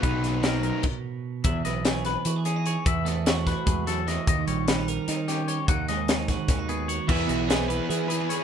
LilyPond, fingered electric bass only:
\new Staff \with { instrumentName = "Fingered electric bass" } { \clef bass \time 7/8 \key e \lydian \tempo 4 = 149 b,,2 r4. | e,8 b,,4. e4. | e,2 e,4. | dis,8 ais,,4. dis4. |
dis,2 dis,4. | e,8 b,,4. e4. | }